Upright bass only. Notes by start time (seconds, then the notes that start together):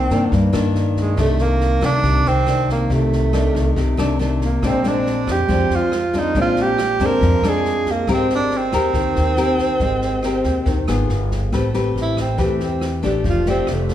0.10 G2
0.32 G2
0.54 G2
1.18 C2
1.82 C2
2.04 C2
2.26 C2
2.90 C2
3.55 C2
3.77 C2
3.99 C2
4.63 A#1
5.27 F2
5.49 F2
5.70 F2
6.35 A#1
7.00 F2
7.21 F2
7.42 F2
8.07 G#1
8.73 D#2
8.94 D#2
9.17 D#2
9.80 G#1
10.45 D#2
10.66 D#2
10.88 G#1
11.10 G1
11.52 A1
11.96 A1
12.38 E2
13.03 A1
13.24 F1
13.67 F1